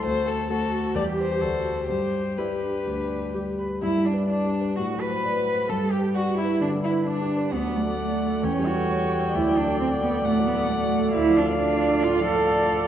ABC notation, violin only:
X:1
M:4/4
L:1/8
Q:1/4=131
K:G
V:1 name="Violin"
c A A2 d c3 | c2 B4- B z | E D D2 F B3 | A G F E D E D2 |
f4 g4- | g4 f4 | [K:Dm] f8 |]